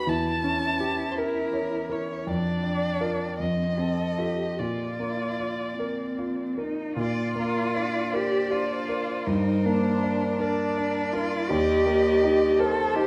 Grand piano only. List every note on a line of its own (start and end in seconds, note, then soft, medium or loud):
0.00 0.10 F#4 soft
0.00 0.10 B4 soft
0.07 2.23 E2 soft
0.44 1.02 C#4 soft
0.80 1.39 G4 soft
1.18 1.77 A#4 soft
1.53 2.13 C#5 soft
1.90 2.27 A#4 soft
2.27 3.36 F2 soft
2.63 3.24 D4 soft
3.01 3.35 F4 soft
3.01 3.35 A#4 soft
3.40 4.55 F2 soft
3.78 4.42 C4 soft
4.18 4.55 F4 soft
4.18 4.55 A4 soft
4.59 6.94 A#2 soft
5.00 5.63 A#3 soft
5.39 6.02 F4 soft
5.79 6.43 A#4 soft
6.19 6.83 F4 soft
6.58 6.98 A#4 soft
6.96 9.23 A#2 soft
7.35 7.98 A#3 soft
7.74 8.36 D4 soft
8.13 8.74 A#4 soft
8.50 9.12 D4 soft
8.89 9.27 A#4 soft
9.27 11.46 G2 soft
9.65 10.26 A#3 soft
10.04 10.63 D4 soft
10.40 10.99 A#4 soft
10.78 11.36 D4 soft
11.14 11.50 A#4 soft
11.50 13.07 D#2 medium
11.86 12.45 A#3 soft
12.24 12.83 D#4 soft
12.60 13.07 A#4 soft
12.96 13.07 D#4 soft